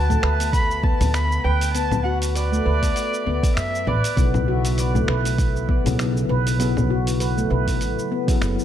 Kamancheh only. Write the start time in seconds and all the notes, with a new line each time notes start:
Already playing: A5
0.53 B5
0.83 A5
1.14 B5
1.44 G5
1.73 A5
2.04 F#5
2.35 D5
3.56 E5
3.87 D5